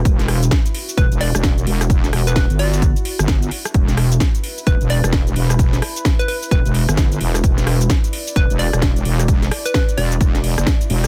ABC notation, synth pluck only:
X:1
M:4/4
L:1/16
Q:"Swing 16ths" 1/4=130
K:Em
V:1 name="Synth pluck"
z8 B2 d2 z4 | z3 B B z d6 z4 | z8 B2 d2 z4 | z4 z B B z B4 z4 |
z8 B2 d2 z4 | z3 B B z d6 z4 |]